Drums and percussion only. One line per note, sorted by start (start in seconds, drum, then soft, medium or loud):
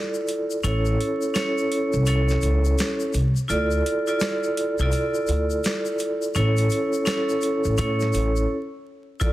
0.14 shaker medium
0.27 closed hi-hat medium
0.27 shaker soft
0.51 shaker medium
0.64 closed hi-hat medium
0.64 shaker medium
0.85 shaker soft
1.01 closed hi-hat medium
1.22 shaker medium
1.35 cross-stick medium
1.35 snare loud
1.35 closed hi-hat medium
1.35 shaker medium
1.58 shaker soft
1.72 closed hi-hat medium
1.93 shaker soft
2.06 closed hi-hat medium
2.06 shaker medium
2.29 snare soft
2.29 shaker soft
2.41 closed hi-hat medium
2.41 shaker medium
2.65 shaker soft
2.78 cross-stick medium
2.78 snare loud
2.78 closed hi-hat medium
2.78 shaker medium
3.00 shaker medium
3.13 closed hi-hat medium
3.13 shaker soft
3.36 shaker medium
3.49 closed hi-hat medium
3.49 shaker medium
3.71 shaker soft
3.86 closed hi-hat medium
4.07 shaker soft
4.20 cross-stick medium
4.20 snare loud
4.20 closed hi-hat medium
4.20 shaker medium
4.44 shaker soft
4.57 closed hi-hat medium
4.79 shaker soft
4.92 closed hi-hat medium
4.92 shaker medium
5.14 shaker soft
5.27 closed hi-hat medium
5.27 shaker medium
5.50 shaker medium
5.64 cross-stick medium
5.64 snare loud
5.64 closed hi-hat medium
5.64 shaker medium
5.85 shaker medium
5.99 closed hi-hat medium
5.99 shaker soft
6.22 shaker medium
6.35 closed hi-hat medium
6.35 shaker medium
6.57 closed hi-hat medium
6.57 shaker soft
6.70 closed hi-hat medium
6.70 shaker medium
6.93 shaker medium
7.06 cross-stick medium
7.06 snare loud
7.06 closed hi-hat medium
7.06 shaker medium
7.29 shaker soft
7.41 closed hi-hat medium
7.41 shaker soft
7.64 shaker soft
7.78 closed hi-hat medium
7.78 shaker medium
8.00 snare soft
8.00 shaker soft
8.13 closed hi-hat medium
8.13 shaker medium
8.36 shaker soft
9.21 kick loud
9.21 closed hi-hat medium
9.21 shaker medium